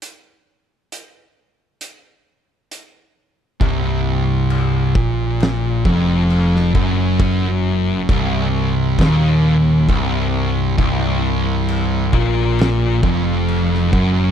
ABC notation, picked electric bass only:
X:1
M:4/4
L:1/8
Q:1/4=67
K:Cm
V:1 name="Picked electric bass" clef=bass
z8 | C,,,3 B,,,2 F,,,2 ^F,,,- | ^F,,,2 C,,,2 E,,,2 C,,,2 | C,,,3 B,,,2 F,,,2 ^F,,, |]